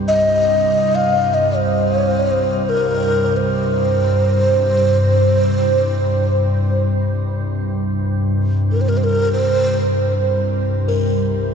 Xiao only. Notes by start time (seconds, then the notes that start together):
0.08 D#5
0.95 F5
1.34 D#5
1.57 C5
2.69 A#4
3.37 C5
8.72 A#4
8.81 C5
8.89 A#4
8.97 C5
9.04 A#4
9.33 C5